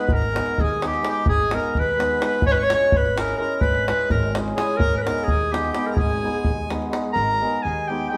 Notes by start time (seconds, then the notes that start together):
Already playing: G#3
0.00 B4
0.06 B5, davul low
0.10 G#1 A#4
0.15 A#5
0.22 davul high
0.33 G#3 B3 D#4 G#4, davul high
0.46 davul high
0.58 D#2 G#4, davul low
0.63 G#5
0.71 davul high
0.82 G#3 B3 D#4 G#4 G5, davul high
0.87 G4
0.94 davul high
1.02 G#3 B3 D#4 G#4, davul high
1.08 G4 G5
1.26 G#1 G#4 G#5, davul low
1.40 davul high
1.51 G#3 B3 D#4 G#4, davul high
1.55 A#4 A#5
1.64 davul high
1.75 D#2, davul low
1.79 B4 B5
1.89 davul high
1.97 G#3 B3 D#4 G#4, davul high
2.20 G#3 B3 D#4 G#4, davul high
2.25 B4 B5
2.33 davul high
2.42 G#1, davul low
2.47 C#5 C#6
2.51 B4 B5
2.58 C#6, davul high
2.63 C#5
2.70 G#3 C#4 E4 G#4 C#6, davul high
2.75 C#5
2.81 davul high
2.92 G#1 B5, davul low
2.97 B4
3.06 davul high
3.16 G#3 C#4 E4 G#4 A#4 A#5, davul high
3.28 davul high
3.38 G#3 C#4 E4 G#4 A#4 A#5
3.61 G#1 B4 B5, davul low
3.75 davul high
3.87 G#3 C#4 E4 G#4 B4 B5, davul high
4.01 davul high
4.10 G#1 A#4 A#5, davul low
4.23 davul high
4.35 G#3 C#4 E4 G#4, davul high
4.48 davul high
4.56 G#3 C#4 E4 G#4 G#5, davul high
4.77 G#1 A#4 A#5, davul low
4.93 davul high
4.97 B4 B5
5.02 G#3 B3 G#4 A#4
5.06 D#4 A#5, davul high
5.24 G#4
5.28 D#2 G#5, davul low
5.41 davul high
5.51 G#3 B3 D#4 G4 G#4 G5, davul high
5.64 davul high
5.73 G#3 B3 D#4 G4 G#4, davul high
5.78 G5
5.87 A#4
5.91 G#4 A#5
5.97 G#1 G#5, davul low
6.23 G#3 B3 D#4 G#4
6.34 davul high
6.44 D#2, davul low
6.69 G#3 B3 D#4 G#4, davul high
6.82 davul high
6.90 G#3 B3 D#4 G#4, davul high
7.13 G#1 A#4 A#5
7.41 G#3 B3 D#4 G#4
7.63 D#2 G#4 G#5
7.87 G#3 B3 D#4 G4 G5
7.92 G#4
8.09 G#3 B3 D#4 G4 G#4 G5